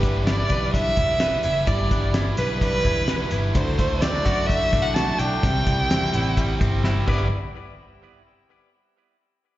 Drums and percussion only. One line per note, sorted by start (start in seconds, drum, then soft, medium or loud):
0.03 kick medium
0.03 closed hi-hat medium
0.27 snare loud
0.27 closed hi-hat medium
0.50 kick medium
0.50 closed hi-hat medium
0.74 kick medium
0.74 closed hi-hat medium
0.97 kick loud
0.97 closed hi-hat medium
1.20 snare loud
1.20 closed hi-hat medium
1.43 closed hi-hat medium
1.67 kick loud
1.67 closed hi-hat medium
1.91 kick medium
1.91 closed hi-hat medium
2.14 snare loud
2.14 closed hi-hat loud
2.37 closed hi-hat medium
2.61 kick medium
2.61 closed hi-hat medium
2.85 kick loud
2.85 closed hi-hat medium
3.08 snare loud
3.08 closed hi-hat medium
3.31 closed hi-hat medium
3.55 kick loud
3.55 closed hi-hat medium
3.79 kick medium
3.79 closed hi-hat medium
4.02 snare loud
4.02 closed hi-hat loud
4.26 kick medium
4.26 closed hi-hat medium
4.50 kick medium
4.50 closed hi-hat medium
4.73 kick loud
4.73 snare soft
4.73 closed hi-hat medium
4.96 snare loud
4.96 closed hi-hat medium
5.19 closed hi-hat medium
5.43 kick loud
5.43 closed hi-hat medium
5.67 kick loud
5.67 closed hi-hat medium
5.91 snare loud
5.91 closed hi-hat loud
6.14 closed hi-hat medium
6.37 kick medium
6.37 closed hi-hat medium
6.61 kick loud
6.61 closed hi-hat medium
6.84 snare medium
7.08 kick loud
7.08 crash medium